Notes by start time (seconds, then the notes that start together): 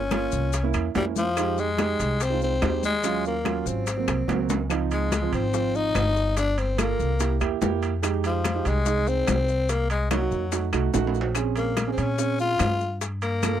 Already playing: G1 C#4
0.11 A#3 C#4 F4, high bongo, high conga, high timbale, low timbale, claves, maracas
0.32 C2, high bongo, high conga, maracas
0.53 high bongo, high conga, high timbale, maracas
0.63 A#3 C#4 E4
0.74 E2, high bongo, high conga, high timbale, claves, maracas
0.95 F2 G3 A#3 C#4 E4, high bongo, low bongo, high conga, high timbale, low timbale, maracas
1.16 F3, high bongo, high conga, maracas
1.37 G#3 D#4 G4, high bongo, high conga, high timbale, claves, maracas
1.58 G#3, high conga, maracas
1.78 G#3 D#4 G4, high bongo, high conga, high timbale, low timbale, claves, maracas
2.00 C2, high bongo, high conga, high timbale, maracas
2.20 C4, high bongo, high conga, high timbale, maracas
2.30 G#3 D#4 F4
2.41 C4, high bongo, high conga, maracas
2.61 D#2 G#3 D#4 G4, high bongo, low bongo, high conga, high timbale, low timbale, claves, maracas
2.83 G#3, high bongo, high conga, maracas
3.04 F#3 C#4 F4, high bongo, high conga, high timbale, maracas
3.25 A#3, high conga, maracas
3.44 F#3 C#4 F4, high bongo, high conga, high timbale, low timbale, claves, maracas
3.61 A#3
3.66 G#1 C4, high bongo, high conga, maracas
3.87 high bongo, high conga, high timbale, maracas
3.97 F#3 A#3 C4
4.08 C2, high bongo, high conga, high timbale, claves, maracas
4.28 C#2 F#3 A#3 C4, low bongo, high conga, high timbale, low timbale, maracas
4.49 low bongo, high conga, high timbale, maracas
4.69 F3 C4 D#4, high bongo, high conga, high timbale, claves, maracas
4.91 G#3, high conga, high timbale, maracas
5.12 high bongo, high conga, high timbale, low timbale, claves, maracas
5.22 F3 C4 F4
5.33 G#1 C4, high bongo, high conga, high timbale, maracas
5.53 F3 C4 F4, high bongo, high conga, maracas
5.75 D#4, high bongo, high conga, maracas
5.95 G1, high bongo, low bongo, high conga, high timbale, low timbale, claves, maracas
6.16 high bongo, high conga, maracas
6.37 D4, high bongo, high conga, high timbale, maracas
6.58 C4, high conga, high timbale, maracas
6.77 A#3 F4 A4, high bongo, high conga, high timbale, low timbale, claves, maracas
6.88 A#3 F4 A4
6.99 C2, high bongo, high conga, maracas
7.19 A#3 E4 G4, high bongo, high conga, high timbale, maracas
7.40 E2 A#3 E4 G4 E5, high bongo, high conga, high timbale, claves, maracas
7.61 F2 A#3 E4 G4 G5, high bongo, low bongo, high conga, low timbale, maracas
7.82 high bongo, high conga, high timbale, maracas
8.03 G#3 D#4 G4, high bongo, high conga, high timbale, claves, maracas
8.24 F3, high conga, high timbale, maracas
8.44 high bongo, high conga, high timbale, low timbale, claves, maracas
8.54 G#3 D#4 G4
8.65 C2 G#3, high bongo, high conga, high timbale, maracas
8.86 G#3 D#4 G#4, high bongo, high conga, maracas
9.07 C4, high bongo, high conga, maracas
9.27 C2, high bongo, low bongo, high conga, high timbale, low timbale, claves, maracas
9.48 high bongo, maracas
9.69 A#3, high bongo, high conga, high timbale, maracas
9.90 G#3, high conga, high timbale, maracas
10.11 F#3 A#3 D#4 F#4, high bongo, high conga, high timbale, low timbale, claves, maracas
10.21 A#3 D#4 F#4
10.31 F2, high bongo, high conga, maracas
10.52 A3 D#4 F#4, high bongo, high conga, high timbale, maracas
10.72 C2 A3 D#4 F#4, high bongo, high conga, high timbale, claves, maracas
10.93 A#1 A3 D#4 F#4, high bongo, low bongo, high conga, high timbale, maracas
11.07 high timbale
11.14 high bongo, high conga, maracas
11.21 low timbale
11.34 C4 C#4 G#4, high bongo, high conga, high timbale, claves, maracas
11.56 A#3, high conga, high timbale, maracas
11.77 high bongo, high conga, high timbale, low timbale, claves, maracas
11.87 C4 C#4 G#4
11.92 C4
11.98 A#2 C#4, high bongo, high conga, high timbale, maracas
12.19 C4 C#4 G#4, high bongo, high conga, maracas
12.39 F4, high bongo, high conga, maracas
12.59 G2, high bongo, low bongo, high conga, high timbale, low timbale, claves, maracas
12.81 high bongo, high conga, maracas
13.01 high bongo, high conga, high timbale, maracas
13.22 A#3, high conga, high timbale, maracas
13.42 A#3 F4 A4, high bongo, high conga, high timbale, low timbale, claves, maracas
13.53 A#3 F4 A4